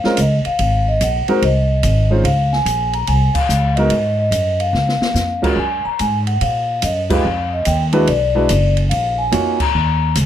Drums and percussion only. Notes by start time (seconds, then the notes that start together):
0.04 snare
0.17 hi-hat pedal, ride
0.45 ride
0.59 ride
1.01 hi-hat pedal, ride
1.28 ride
1.42 ride
1.83 hi-hat pedal, ride
2.25 ride
2.53 snare
2.66 hi-hat pedal, ride
2.93 ride
3.07 ride
3.35 kick, crash
3.49 hi-hat pedal
3.77 ride
3.90 ride
4.32 hi-hat pedal, ride
4.60 ride
4.74 snare
4.89 snare
5.02 snare
5.15 snare, hi-hat pedal
5.44 kick, crash
5.99 hi-hat pedal, ride
6.27 ride
6.41 ride
6.82 hi-hat pedal, ride
7.10 kick, crash
7.65 hi-hat pedal, ride
7.93 ride
8.07 ride
8.49 hi-hat pedal, ride
8.77 ride
8.91 ride
9.32 hi-hat pedal, ride
9.60 kick, crash
10.15 hi-hat pedal, ride